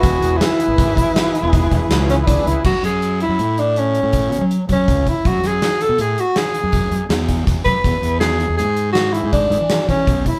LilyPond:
<<
  \new Staff \with { instrumentName = "Analog synth pad" } { \time 7/4 \key fis \minor \tempo 4 = 161 <e e' gis' b'>1.~ <e e' gis' b'>4 | r1. r4 | r1. r4 | r1. r4 | }
  \new Staff \with { instrumentName = "Tenor saxophone" } { \time 7/4 \key fis \minor fis'4 e'1~ e'8 cis'16. e'32 d'8 e'8 | fis'8 gis'4 e'4 d'8 cis'2 r8 cis'4 e'8 | fis'8 gis'4 a'8 gis'8 fis'8 gis'2 r4. b'8~ | b'4 gis'4 gis'4 fis'8 e'8 d'4. cis'4 e'8 | }
  \new Staff \with { instrumentName = "Fingered electric bass" } { \clef bass \time 7/4 \key fis \minor e,,8 e,,8 r8. gis,,16 gis,,8 r4 r16 e,,8. e,,16 r16 cis,4 cis,16 r16 cis,16 r16 | fis,16 r16 fis,4~ fis,16 fis,16 a,4.~ a,16 a,8. b,16 fis8 r16 fis8 cis,8 r8 | fis,8 fis,8 r8. b,16 a,8 r4 r16 fis,8. fis,16 r16 e,4 e,16 r16 fis,16 r16 | e,16 r16 e,4~ e,16 e,16 gis,4.~ gis,16 gis,8. gis,16 e8 r16 e8 b,,8 r8 | }
  \new DrumStaff \with { instrumentName = "Drums" } \drummode { \time 7/4 <hh bd>8 hh8 <hh sn>8 hh8 <hh bd>8 <hh bd>8 <hh sn>8 hh8 <hh bd>8 <hh bd>8 <hh sn>8 <hh sn>8 <hh bd>8 hh8 | <cymc bd>8 hh8 hh8 hh8 hh8 hh8 hh8 hh8 <hh bd>8 hh8 hh8 <hh bd>8 <hh bd>8 <hh bd>8 | <hh bd>8 <hh sn>8 <hh sn>8 hh8 hh8 hh8 <hh sn>8 hh8 <hh bd>8 hh8 <hh sn>8 <hh bd sn>8 <hh bd sn>8 <hh bd>8 | <hh bd>8 hh8 <hh sn>8 hh8 hh8 hh8 <hh sn>8 hh8 <hh bd>8 hh8 <hh sn>8 <hh bd>8 <hh bd>8 <hh bd>8 | }
>>